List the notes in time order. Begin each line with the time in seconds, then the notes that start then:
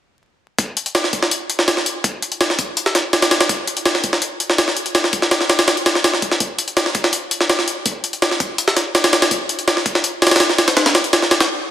0.58 kick, closed hi-hat
0.77 closed hi-hat
0.86 closed hi-hat
0.95 snare, closed hi-hat
1.04 snare
1.13 kick, closed hi-hat
1.23 snare
1.31 closed hi-hat
1.50 closed hi-hat
1.59 snare
1.68 snare, closed hi-hat
1.77 snare
1.86 closed hi-hat
2.04 kick, closed hi-hat
2.22 closed hi-hat
2.32 closed hi-hat
2.41 snare, closed hi-hat
2.50 snare
2.59 kick, closed hi-hat
2.77 closed hi-hat
2.86 snare
2.95 snare, closed hi-hat
3.13 snare, closed hi-hat
3.22 snare, closed hi-hat
3.31 snare, closed hi-hat
3.41 snare, closed hi-hat
3.49 kick, closed hi-hat
3.67 closed hi-hat
3.77 closed hi-hat
3.85 snare, closed hi-hat
3.95 snare
4.04 kick, closed hi-hat
4.13 snare
4.22 closed hi-hat
4.40 closed hi-hat
4.50 snare
4.58 snare, closed hi-hat
4.68 snare
4.77 closed hi-hat
4.86 closed hi-hat
4.95 snare, closed hi-hat
5.04 snare
5.13 kick, closed hi-hat
5.22 snare
5.31 snare, closed hi-hat
5.41 snare
5.50 snare, closed hi-hat
5.59 snare, closed hi-hat
5.68 snare, closed hi-hat
5.77 closed hi-hat
5.86 snare, closed hi-hat
5.95 snare
6.04 snare, closed hi-hat
6.13 snare
6.22 kick, closed hi-hat
6.31 snare
6.40 kick, closed hi-hat
6.59 closed hi-hat
6.68 closed hi-hat
6.77 snare, closed hi-hat
6.86 snare
6.95 kick, closed hi-hat
7.04 snare
7.13 closed hi-hat
7.31 closed hi-hat
7.41 snare
7.50 snare, closed hi-hat
7.59 snare
7.68 closed hi-hat
7.86 kick, closed hi-hat
8.04 closed hi-hat
8.13 closed hi-hat
8.22 snare, closed hi-hat
8.31 snare
8.40 kick, closed hi-hat
8.58 closed hi-hat
8.68 snare
8.77 snare, closed hi-hat
8.95 snare, closed hi-hat
9.04 snare, closed hi-hat
9.13 snare, closed hi-hat
9.22 snare, closed hi-hat
9.31 kick, closed hi-hat
9.49 closed hi-hat
9.59 closed hi-hat
9.68 snare, closed hi-hat
9.77 snare
9.86 kick, closed hi-hat
9.95 snare
10.04 closed hi-hat
10.22 snare, closed hi-hat
10.27 snare, closed hi-hat
10.31 snare, closed hi-hat
10.36 snare, closed hi-hat
10.40 snare, closed hi-hat
10.49 snare
10.58 snare, closed hi-hat
10.68 snare, closed hi-hat
10.77 snare, closed hi-hat
10.86 snare, closed hi-hat
10.95 snare, closed hi-hat
11.04 closed hi-hat
11.13 snare, closed hi-hat
11.22 snare
11.31 snare, closed hi-hat
11.40 snare, closed hi-hat